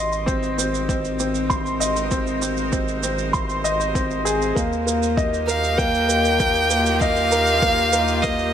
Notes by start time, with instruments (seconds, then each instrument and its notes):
Already playing: analog synth bass G#1, string quartet G#3 C4 D#4 G4 D#5 D6, upright piano D#5 C6
0.13 shaker
0.17 string quartet A#4
0.26 upright piano C4, kick, shaker
0.43 shaker
0.55 upright piano C4, string quartet C5, shaker
0.75 shaker
0.89 upright piano C4, kick, shaker
1.05 shaker
1.20 upright piano C4, shaker
1.35 shaker
1.50 upright piano C6, kick, shaker
1.66 shaker
1.80 upright piano D#5, shaker
1.96 shaker
2.11 upright piano C4, kick, shaker
2.27 shaker
2.42 upright piano C4, shaker
2.57 shaker
2.72 upright piano C4, kick, shaker
2.88 shaker
3.03 upright piano C4, shaker
3.18 shaker
3.33 upright piano C6, kick, shaker
3.49 shaker
3.64 upright piano D#5, shaker
3.81 shaker
3.95 upright piano C4, kick, shaker
4.11 shaker
4.25 upright piano G#4, shaker
4.42 shaker
4.55 analog synth bass D#2, string quartet D#3, upright piano A#3, kick, shaker
4.73 shaker
4.81 string quartet F4
4.87 upright piano A#3, shaker
5.03 string quartet A#3, shaker
5.17 upright piano D#5, kick, shaker
5.23 string quartet G4
5.34 shaker
5.47 upright piano A#4, violin F5, shaker
5.64 shaker
5.78 upright piano A#3, violin G5, kick, shaker
5.94 shaker
6.08 upright piano A#3, shaker
6.25 shaker
6.40 upright piano A#3, kick, shaker
6.55 shaker
6.70 upright piano A#3, shaker
6.86 shaker
7.00 upright piano D#5, violin F5, kick, shaker
7.16 shaker
7.31 upright piano A#4, shaker
7.47 shaker
7.62 upright piano A#3, kick, shaker
7.77 shaker
7.93 upright piano A#3, shaker
8.08 shaker
8.22 upright piano A#3, violin D#5, kick, shaker
8.39 shaker